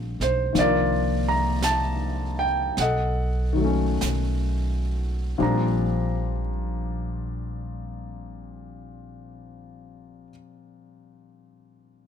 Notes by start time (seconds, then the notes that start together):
Already playing: A#1 F3 G3 A3 C4 D4
0.20 B1 C5, snare
0.53 C2 D#3 F3 A#3, brush sweep, snare
0.58 D4 F4 A#4 D5
1.29 A#5
1.62 A5, snare, hi-hat pedal
2.39 G5
2.77 B1 F#5, brush sweep, snare
2.81 A4 D#5
3.53 D#3 F#3
3.60 A3
3.64 C#4
4.01 B1, snare, hi-hat pedal
5.38 A#1 A#2 F3 G3 C4 D4
5.42 A#5